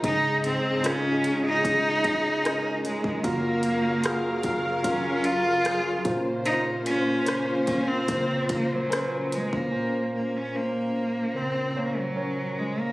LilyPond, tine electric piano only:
<<
  \new Staff \with { instrumentName = "Tine electric piano" } { \time 4/4 \key bes \minor \tempo 4 = 74 <des ees' aes'>4 <des' ees' f'>4 <des' ees' aes'>4 <des' ees' bes'>4 | <f' ges' bes'>4 <f' ges' aes'>4 <ges f' bes'>4 <ges f' aes'>8 <des' bes' c''>8~ | <des' bes' c''>4 <des' bes' c''>4 <des bes' c''>4 <des' bes' ces'' c''>4 | <des' bes' c''>4 <des' bes' c''>4 <des bes' c''>8 <des' bes' des''>8 <des' bes' des''>4 | }
  \new Staff \with { instrumentName = "Tine electric piano" } { \clef bass \time 4/4 \key bes \minor <des, aes,>1 | <ges, des>2.~ <ges, des>8 <bes, f'>8~ | <bes, f'>2.~ <bes, f'>8 r8 | <bes, f'>1 | }
>>